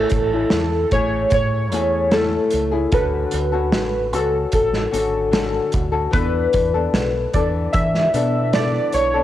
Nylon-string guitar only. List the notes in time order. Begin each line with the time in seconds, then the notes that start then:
Already playing: A3 C#4 E4
0.33 C#4 E4
0.91 A3 C#4 E4 G#4
1.72 A3 C#4 E4 G#4
2.12 A3 C#4 E4
2.71 C#4 E4 G#4
2.92 D3 C#4 F#4 A4
3.52 C#4 F#4 A4
4.13 C#4 F#4 A4
4.91 D3 C#4 F#4 A4
5.31 D3 C#4 F#4 A4
5.92 C#4 F#4 A4
6.11 E3 B3 D4 A4
6.74 B3 D4 A4
7.33 E3 B3 D4 A4
8.13 E3 B3 D4 A4
8.53 E3 B3 D4 A4
9.14 B3 D4 A4